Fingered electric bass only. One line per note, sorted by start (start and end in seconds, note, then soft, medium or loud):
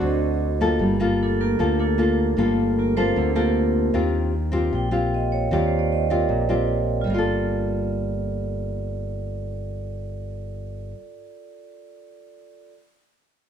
0.01 0.76 D2 medium
0.79 1.54 G1 medium
1.59 2.33 D2 medium
2.37 3.11 G1 medium
3.16 3.90 D2 medium
3.94 4.69 D#2 medium
4.73 5.47 A#1 medium
5.51 6.25 D#2 medium
6.29 7.04 A#1 medium
7.07 10.93 G1 medium